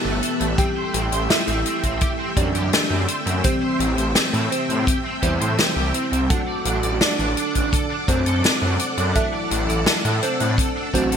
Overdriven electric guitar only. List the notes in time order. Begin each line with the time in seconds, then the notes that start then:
0.05 A3
0.23 A4
0.41 A3
0.58 C4
0.76 C5
0.94 C4
1.12 C5
1.30 C4
1.48 C4
1.66 C4
1.83 C4
2.01 G4
2.19 C4
2.37 C4
2.55 G4
2.73 C4
2.91 C4
3.08 C5
3.26 C4
3.44 C4
3.62 C5
3.80 C4
3.98 C5
4.16 C4
4.33 C4
4.51 C4
4.69 C4
4.87 G4
5.05 C4
5.23 G4
5.40 C5
5.58 C4
5.76 G4
5.94 C4
6.12 C4
6.30 D4
6.48 D5
6.66 D4
6.83 D5
7.01 D4
7.19 D4
7.37 D4
7.55 D4
7.73 A4
7.90 D4
8.08 D4
8.26 A4
8.44 D4
8.62 D4
8.80 D5
8.98 D4
9.16 D4
9.34 D5
9.51 D4
9.69 D5
9.87 D4
10.05 D4
10.23 D4
10.41 D4
10.59 A4
10.76 D4
10.94 D4
11.12 A4